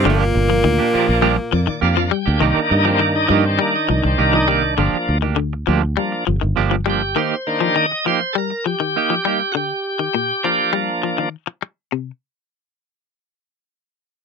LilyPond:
<<
  \new Staff \with { instrumentName = "Clean electric guitar" } { \time 4/4 \key c \minor \tempo 4 = 101 <f bes d' g'>16 r4 <bes d' g'>16 <f d' g'>16 r16 <f bes d' g'>16 r8. <bes g'>16 r8 <bes d' g'>16 | <ees bes ees' g'>16 r8 <bes ees' g'>16 r8 <ees bes ees' g'>16 r4 r16 <ees bes ees' g'>16 r16 <ees bes ees' g'>16 r16 | <f bes d' g'>16 r8 <bes d' g'>16 r8 <f bes d' g'>16 r4 r16 <f bes d' g'>16 r16 <f bes d' g'>16 r16 | <bes ees' g'>16 r8 <ees' g'>16 r8 <bes ees' g'>16 r4 r16 <bes ees' g'>16 r16 <bes ees' g'>16 r16 |
r1 | r1 | }
  \new Staff \with { instrumentName = "Tonewheel organ" } { \time 4/4 \key c \minor r4. <f bes d'>8 r8 d''8 <f bes d' f''>8 g''8 | r8 ees'16 c'16 bes16 ees'16 ees'16 c'16 bes16 ees'16 ees'16 c'16 bes16 ees'16 d'8~ | d'2~ d'8 r4 g'8 | c''4 ees''8 c''8 <a' bes'>8 g'4. |
<fis' g'>2 r2 | r1 | }
  \new Staff \with { instrumentName = "Tonewheel organ" } { \time 4/4 \key c \minor r1 | <ees bes d'>1 | <f bes d'>8 r4. <f bes d'>8 r4. | r8 <ees bes d'>8 r2. |
r4. <f bes d'>4. r4 | r1 | }
  \new Staff \with { instrumentName = "Tenor saxophone" } { \time 4/4 \key c \minor bes2. r4 | r1 | r1 | r1 |
r1 | r1 | }
  \new Staff \with { instrumentName = "Clean electric guitar" } { \clef bass \time 4/4 \key c \minor d8 r16 f16 ees8 r8 g8 f16 ees8 f16 g8 | ees8 r16 f16 ees8 f8 g8 f16 ees8 f16 g8 | d8 r16 ees16 d8 f8 g8 f16 ees8 f16 g8 | ees8 r16 f16 ees8 f8 g8 f16 ees8 f16 g8 |
d8 r16 ees16 bes,8 f8 g8 f16 ees8 r8. | c8 r2. r8 | }
  \new Staff \with { instrumentName = "Trombone" } { \clef bass \time 4/4 \key c \minor bes,2. r4 | r1 | r1 | r1 |
r1 | r1 | }
  \new Staff \with { instrumentName = "Fingered electric bass" } { \clef bass \time 4/4 \key c \minor g,,8 g,,8 d,16 r8 bes,,8 r16 f,16 r16 f,8 r16 d,16 | c,16 r16 g,4 g,8 r8 c,16 c,16 c,4 | g,,16 r16 d,4 d,8 r8 g,,16 g,,16 g,,4 | r1 |
r1 | r1 | }
>>